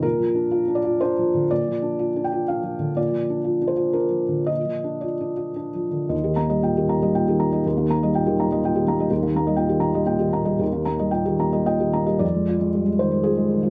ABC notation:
X:1
M:3/4
L:1/16
Q:1/4=120
K:Eb
V:1 name="Felt piano"
B6 d2 c4 | d6 g2 f4 | d6 c2 B4 | e4 d4 z4 |
z12 | z12 | z12 | z8 e4 |
d6 c2 A4 |]
V:2 name="Felt piano"
(3B,,2 F,2 D2 (3F2 D2 F2 (3D2 F,2 D,2 | (3B,,2 F,2 D2 (3F2 D2 F2 (3D2 F,2 D,2 | (3B,,2 F,2 D2 (3F2 D2 F2 (3D2 F,2 D,2 | (3B,,2 F,2 D2 (3F2 D2 F2 (3D2 F,2 D,2 |
[E,,e] [E,G] [B,b] [G,e] [B,,g] [E,G] [B,b] [G,e] [B,,g] [E,G] [B,b] [G,e] | [E,,G] [E,B,] [B,b] [G,e] [B,,g] [E,G] [B,b] [G,e] [B,,g] [E,G] [B,b] [G,e] | [E,,G] [E,B,] [B,b] [G,e] [B,,g] [E,G] [B,b] [G,e] [B,,g] [E,G] [B,b] [G,e] | [E,,G] [E,B,] [B,b] [G,e] [B,,g] [E,G] [B,b] [G,e] [B,,g] [E,G] [B,b] [G,e] |
F,, A, F A, G, A, E, A, F A, E, F |]